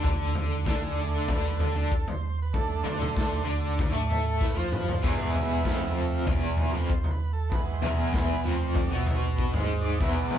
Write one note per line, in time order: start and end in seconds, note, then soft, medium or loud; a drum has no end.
0.00 0.64 D3 medium
0.00 0.14 D4 medium
0.04 0.63 D2 medium
0.04 0.65 D4 medium
0.04 kick loud
0.04 floor tom medium
0.35 floor tom medium
0.65 1.24 D2 medium
0.65 1.27 D3 medium
0.65 1.28 D4 medium
0.65 0.83 A4 medium
0.65 kick loud
0.65 snare medium
0.65 floor tom medium
0.84 1.15 G#4 medium
0.99 1.40 D3 medium
0.99 1.40 A3 soft
0.99 1.40 D4 medium
1.14 1.30 A4 medium
1.28 1.72 D2 medium
1.28 1.75 D3 medium
1.28 1.75 D4 loud
1.28 1.61 B4 medium
1.28 kick loud
1.28 floor tom medium
1.59 2.08 A4 medium
1.59 floor tom medium
1.75 1.90 D2 medium
1.75 1.90 D3 medium
1.75 1.90 D4 medium
1.92 kick loud
2.08 2.40 C5 medium
2.08 floor tom medium
2.42 2.56 B4 medium
2.53 3.43 D3 medium
2.53 3.43 A3 soft
2.53 3.43 D4 medium
2.53 2.87 A4 medium
2.53 kick loud
2.53 floor tom medium
2.84 3.43 D2 medium
2.84 3.43 D3 medium
2.84 3.45 D4 medium
2.84 3.50 C5 medium
2.84 floor tom medium
3.02 mid tom medium
3.17 kick loud
3.17 snare medium
3.17 floor tom medium
3.45 3.90 D2 medium
3.45 3.92 D3 medium
3.45 3.92 D4 medium
3.50 4.07 D5 medium
3.79 kick loud
3.79 floor tom medium
3.92 4.52 A2 medium
3.92 4.54 A3 medium
3.92 4.55 A4 medium
4.11 4.42 A4 medium
4.11 floor tom medium
4.41 4.57 B4 medium
4.41 kick loud
4.41 snare medium
4.55 5.00 F2 medium
4.55 5.01 F3 medium
4.55 5.02 F4 medium
4.55 4.72 C5 medium
4.72 4.86 B4 medium
4.72 mid tom medium
4.88 5.04 C5 medium
4.88 floor tom medium
5.00 5.61 E1 medium
5.00 5.63 E2 medium
5.00 5.63 E3 medium
5.00 5.92 G#3 soft
5.00 5.92 E4 soft
5.00 kick loud
5.00 floor tom medium
5.00 crash medium
5.05 5.93 B3 medium
5.05 5.36 D5 loud
5.34 6.24 E5 medium
5.34 floor tom medium
5.64 6.23 F1 medium
5.64 6.26 F2 medium
5.64 6.26 F3 loud
5.64 kick loud
5.64 snare medium
5.64 floor tom medium
6.26 6.71 E1 medium
6.26 6.72 E2 medium
6.26 6.73 E3 loud
6.26 kick loud
6.26 floor tom medium
6.57 6.91 B4 medium
6.57 floor tom medium
6.73 6.88 F1 medium
6.73 6.88 F2 medium
6.73 6.88 F3 loud
6.90 7.11 C5 medium
6.90 kick loud
7.04 floor tom medium
7.11 7.32 B4 medium
7.33 7.53 A4 medium
7.50 8.40 E3 medium
7.50 8.40 G#3 soft
7.50 8.41 B3 medium
7.50 7.62 B4 medium
7.50 kick loud
7.50 floor tom medium
7.74 7.94 C5 medium
7.82 8.41 E1 medium
7.82 8.44 E2 medium
7.82 8.44 E3 medium
7.82 floor tom medium
7.91 8.14 G#4 medium
8.13 8.35 C5 medium
8.13 kick loud
8.13 snare medium
8.13 floor tom medium
8.33 8.55 B4 medium
8.44 8.89 F1 medium
8.44 8.90 F2 medium
8.44 8.91 F3 medium
8.56 8.77 C5 medium
8.75 8.97 D5 medium
8.75 kick loud
8.75 floor tom medium
8.90 9.50 B1 medium
8.90 9.52 B2 medium
8.90 9.52 B3 medium
8.97 9.16 E5 medium
9.07 floor tom medium
9.16 9.26 C5 medium
9.35 9.58 B4 medium
9.35 kick loud
9.52 9.97 G#1 medium
9.52 9.99 G#2 medium
9.52 9.99 G#3 loud
9.52 floor tom medium
9.57 9.80 C5 medium
9.81 10.02 D5 loud
9.99 10.38 E1 loud
9.99 10.38 E2 loud
9.99 10.38 E3 loud
9.99 10.38 G#3 medium
9.99 10.38 B3 medium
9.99 10.38 E4 medium
9.99 10.11 E5 medium
9.99 kick loud
9.99 floor tom medium
10.22 10.38 D5 medium
10.31 floor tom medium